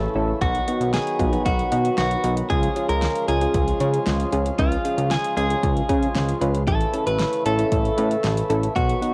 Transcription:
Already playing: harmonium C#3 E3 A3 E4, clean electric guitar A4
0.15 analog synth bass A1, synth keys C#4 E4 A4
0.41 analog synth bass B1, harmonium D#3 F#3 B3 F#4, clean electric guitar F#4, kick, closed hi-hat
0.55 closed hi-hat
0.68 synth keys B3 D#4 F#4, closed hi-hat
0.80 analog synth bass B1, closed hi-hat
0.94 clean electric guitar G#4, snare, closed hi-hat
1.07 closed hi-hat
1.19 analog synth bass B1, synth keys B3 D#4 F4, kick, closed hi-hat
1.33 synth keys B3 D#4 F#4, closed hi-hat
1.46 analog synth bass B1, clean electric guitar F#4, kick, closed hi-hat
1.59 closed hi-hat
1.72 analog synth bass B2, synth keys B3 D#4 F#4, closed hi-hat
1.85 closed hi-hat
1.98 analog synth bass B1, clean electric guitar F#4, snare, closed hi-hat
2.11 closed hi-hat
2.24 analog synth bass B1, synth keys B3 D#4 F#4, closed hi-hat
2.37 closed hi-hat
2.50 analog synth bass C#2, harmonium C#3 F3 G#3 F4, clean electric guitar G#4, kick, closed hi-hat
2.63 closed hi-hat
2.76 synth keys C#4 F4 G#4, closed hi-hat
2.89 analog synth bass C#2, clean electric guitar A#4, closed hi-hat
3.02 snare, closed hi-hat
3.15 closed hi-hat
3.28 analog synth bass C#2, synth keys C#4 F4 A#4, clean electric guitar G#4, closed hi-hat
3.41 synth keys C#4 F4 G#4, closed hi-hat
3.54 analog synth bass C#2, kick, closed hi-hat
3.68 closed hi-hat
3.80 analog synth bass C#3, synth keys C#4 F4 G#4, closed hi-hat
3.94 closed hi-hat
4.07 analog synth bass C#2, snare, closed hi-hat
4.20 closed hi-hat
4.32 analog synth bass C#2, synth keys C#4 F4 G#4, closed hi-hat
4.46 closed hi-hat
4.59 analog synth bass C#2, clean electric guitar F4, kick, closed hi-hat
4.72 closed hi-hat
4.85 synth keys C#4 F4 G#4, closed hi-hat
4.98 analog synth bass C#2, closed hi-hat
5.11 clean electric guitar G#4, snare, closed hi-hat
5.24 closed hi-hat
5.37 analog synth bass C#2, synth keys C#4 F4 G#4, clean electric guitar G#4, closed hi-hat
5.50 synth keys C#4 F4 G#4, closed hi-hat
5.63 analog synth bass C#2, kick, closed hi-hat
5.77 closed hi-hat
5.89 analog synth bass C#3, synth keys C#4 F4 G#4, kick, closed hi-hat
6.03 closed hi-hat
6.15 analog synth bass C#2, snare, closed hi-hat
6.29 closed hi-hat
6.41 analog synth bass C#2, synth keys C#4 F4 B4, closed hi-hat
6.55 closed hi-hat
6.67 analog synth bass A1, harmonium C#3 E3 A3 E4, clean electric guitar A4, kick, closed hi-hat
6.81 closed hi-hat
6.93 synth keys C#4 E4 A4, closed hi-hat
7.07 analog synth bass A1, clean electric guitar B4, closed hi-hat
7.19 snare, closed hi-hat
7.33 closed hi-hat
7.45 analog synth bass A1, synth keys C#4 E4 A4, clean electric guitar A4, closed hi-hat
7.59 synth keys C#4 E4 A4, closed hi-hat
7.72 analog synth bass A1, kick, closed hi-hat
7.85 closed hi-hat
7.98 analog synth bass A2, synth keys C#4 E4 B4, closed hi-hat
8.11 closed hi-hat
8.24 analog synth bass A1, snare, closed hi-hat
8.37 closed hi-hat
8.50 analog synth bass A1, synth keys C#4 E4 A4, closed hi-hat
8.63 closed hi-hat
8.76 analog synth bass B1, harmonium D#3 F#3 B3 F#4, clean electric guitar F#4, kick, closed hi-hat
8.89 closed hi-hat
9.02 synth keys B3 D#4 F#4, closed hi-hat

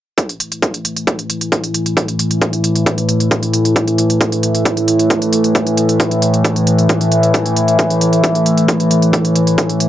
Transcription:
0.18 synth drone A2 E3, kick, closed hi-hat
0.29 closed hi-hat
0.40 closed hi-hat
0.52 closed hi-hat
0.62 kick, closed hi-hat
0.74 closed hi-hat
0.85 closed hi-hat
0.97 closed hi-hat
1.07 kick, closed hi-hat
1.19 closed hi-hat
1.30 closed hi-hat
1.41 closed hi-hat
1.52 kick, closed hi-hat
1.64 closed hi-hat
1.74 closed hi-hat
1.86 closed hi-hat
1.97 kick, closed hi-hat
2.08 closed hi-hat
2.19 closed hi-hat
2.31 closed hi-hat
2.42 kick, closed hi-hat
2.53 closed hi-hat
2.64 closed hi-hat
2.75 closed hi-hat
2.86 kick, closed hi-hat
2.98 closed hi-hat
3.09 closed hi-hat
3.20 closed hi-hat
3.31 kick, closed hi-hat
3.43 closed hi-hat
3.54 closed hi-hat
3.65 closed hi-hat
3.76 kick, closed hi-hat
3.88 closed hi-hat
3.98 closed hi-hat
4.10 closed hi-hat
4.21 kick, closed hi-hat
4.32 closed hi-hat
4.43 closed hi-hat
4.55 closed hi-hat
4.65 kick, closed hi-hat
4.77 closed hi-hat
4.88 closed hi-hat
4.99 closed hi-hat
5.10 kick, closed hi-hat
5.22 closed hi-hat
5.33 closed hi-hat
5.44 closed hi-hat
5.55 kick, closed hi-hat
5.67 closed hi-hat
5.77 closed hi-hat
5.89 closed hi-hat
6.00 kick, closed hi-hat
6.11 closed hi-hat
6.22 closed hi-hat
6.34 closed hi-hat
6.45 kick, closed hi-hat
6.56 closed hi-hat
6.67 closed hi-hat
6.78 closed hi-hat
6.89 kick, closed hi-hat
7.01 closed hi-hat
7.12 closed hi-hat
7.23 closed hi-hat
7.34 kick, closed hi-hat
7.46 closed hi-hat
7.56 closed hi-hat
7.68 closed hi-hat
7.79 kick, closed hi-hat
7.90 closed hi-hat
8.01 closed hi-hat
8.13 closed hi-hat
8.24 kick, closed hi-hat
8.35 closed hi-hat
8.46 closed hi-hat
8.58 closed hi-hat
8.68 kick, closed hi-hat
8.80 closed hi-hat
8.91 closed hi-hat
9.02 closed hi-hat
9.13 kick, closed hi-hat
9.25 closed hi-hat
9.36 closed hi-hat
9.47 closed hi-hat
9.58 kick, closed hi-hat
9.69 closed hi-hat
9.80 closed hi-hat

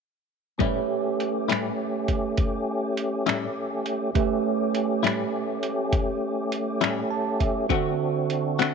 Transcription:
0.58 clean electric guitar A2 G3 C#4 E4, tonewheel organ A3 C#4 G4, tine electric piano A3 G4 B4 C#5 E5, kick, closed hi-hat
1.20 closed hi-hat
1.48 clean electric guitar A2 G3 C#4 E4, finger snap, closed hi-hat
2.08 kick, closed hi-hat
2.37 kick, closed hi-hat
2.97 closed hi-hat
3.26 clean electric guitar A2 G3 C#4 E4, finger snap, closed hi-hat
3.86 closed hi-hat
4.14 tonewheel organ A3 C#4 G4, tine electric piano A3 G4 B4 C#5 E5, kick, closed hi-hat
4.75 closed hi-hat
5.03 clean electric guitar A2 G3 C#4 E4, finger snap, closed hi-hat
5.63 closed hi-hat
5.93 kick, closed hi-hat
6.52 closed hi-hat
6.81 clean electric guitar A2 G3 C#4 E4, finger snap, closed hi-hat
7.11 tine electric piano A5
7.40 tine electric piano E5, kick, closed hi-hat
7.69 tine electric piano D3 F#4 A4 C5 E5, clean electric guitar D3 A3 C4 F#4, tonewheel organ C4 D4 F#4, kick, closed hi-hat
8.30 closed hi-hat
8.59 clean electric guitar D3 A3 C4 F#4, finger snap, closed hi-hat

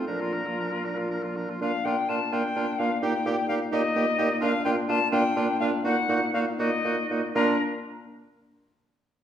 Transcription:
0.07 bassoon A#2, french horn F3, clarinet D4, oboe A#4, flute A#4
0.20 french horn A#3, clarinet F4, oboe F4
0.33 french horn F3, clarinet D4, oboe A#4
0.46 french horn A#3, clarinet F4, oboe F4
0.59 french horn F3, clarinet D4, oboe A#4
0.72 french horn A#3, clarinet F4, oboe F4
0.84 bassoon A#2, french horn F3, clarinet D4, oboe A#4
0.97 french horn A#3, clarinet F4, oboe F4
1.10 french horn F3, clarinet D4, oboe A#4
1.23 french horn A#3, oboe F4, clarinet F4
1.36 french horn F3, clarinet D4, oboe A#4
1.49 french horn A#3, clarinet F4, oboe F4
1.61 bassoon A#2, french horn A#3, clarinet D4, oboe F4, flute F5
1.84 bassoon A#2, french horn A#3, clarinet D4, oboe F4, flute G5
2.09 bassoon A#2, french horn A#3, clarinet D4, oboe F4, flute A5
2.32 bassoon A#2, french horn A#3, clarinet D4, oboe F4, flute G5
2.56 bassoon A#2, french horn A#3, clarinet D4, oboe F4
2.78 bassoon A#2, french horn A#3, clarinet D4, oboe F4, flute F5
3.01 bassoon A#2, french horn A#3, clarinet D#4, oboe G4, flute G5
3.25 bassoon A#2, french horn A#3, clarinet D#4, oboe G4
3.48 bassoon A#2, french horn A#3, clarinet D#4, oboe G4, flute F5
3.71 bassoon A#2, french horn A#3, clarinet D#4, oboe G4, flute D#5
3.95 bassoon A#2, french horn A#3, clarinet D#4, oboe G4
4.18 bassoon A#2, french horn A#3, clarinet D#4, oboe G4
4.41 bassoon A#2, french horn A#3, clarinet D4, oboe F4, flute F5
4.64 bassoon A#2, french horn A#3, clarinet D4, oboe F4, flute G5
4.88 bassoon A#2, french horn A#3, clarinet D4, oboe F4, flute A5
5.11 bassoon A#2, french horn A#3, clarinet D4, oboe F4, flute G5
5.36 bassoon A#2, french horn A#3, clarinet D4, oboe F4
5.60 bassoon A#2, french horn A#3, clarinet D4, oboe F4, flute F5
5.84 bassoon A#2, french horn A#3, clarinet D#4, oboe F#4, flute F#5
6.08 bassoon A#2, french horn A#3, clarinet D#4, oboe F#4
6.33 bassoon A#2, french horn A#3, clarinet D#4, oboe F#4, flute F5
6.58 bassoon A#2, french horn A#3, clarinet D#4, oboe F#4, flute D#5
6.84 bassoon A#2, french horn A#3, clarinet D#4, oboe F#4
7.10 bassoon A#2, french horn A#3, clarinet D#4, oboe F#4
7.35 bassoon A#2, french horn A#3, clarinet D4, oboe F4, flute A#4

